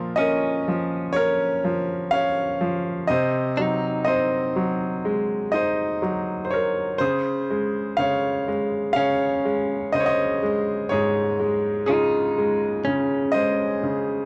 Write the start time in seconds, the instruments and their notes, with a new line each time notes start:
Already playing: grand piano A#2 F3 F4 A#4
0.16 clean electric guitar C#4, grand piano C#4 A#4 D#5
0.68 grand piano F3
1.13 grand piano C#4 A#4 C#5
1.64 grand piano F3
2.11 grand piano C#4 C#5 F5
2.61 grand piano F3
3.08 grand piano C3 C5 D#5
3.57 grand piano F#3, clean electric guitar D#4
4.05 grand piano C4 C5 D#5
4.56 grand piano F#3
5.05 grand piano G#3
5.52 grand piano D#4 C5 D#5
6.02 grand piano F#3
6.45 grand piano C5
6.51 grand piano A#4 C#5
6.98 grand piano C#3 G#4 C5
7.50 grand piano G#3
7.97 grand piano C#3 C#5 F5
8.48 grand piano G#3
8.93 grand piano C#3 C#5 F5, clean electric guitar C#4
9.45 grand piano G#3
9.92 grand piano C#3 C5 D#5
10.00 grand piano C#5
10.06 grand piano C5 D#5
10.43 grand piano G#3
10.89 grand piano G#2 G#4 C#5
11.40 grand piano G#3
11.86 grand piano C#3 F4 G#4, clean electric guitar D#4
12.38 grand piano G#3
12.85 grand piano C#3, clean electric guitar C#4
13.32 grand piano G#3 C5 D#5
13.83 grand piano C#3